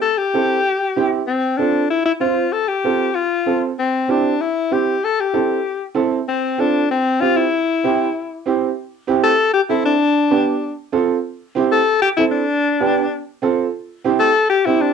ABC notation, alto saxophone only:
X:1
M:4/4
L:1/8
Q:1/4=192
K:C
V:1 name="Alto saxophone"
A G6 z | C2 D2 E E F2 | A G3 F3 z | C2 D2 E2 G2 |
A G4 z3 | C2 D2 C2 F E- | E6 z2 | z3 A2 G E D- |
D4- D z3 | z3 A2 G E D- | D4- D z3 | z3 A2 G E D |]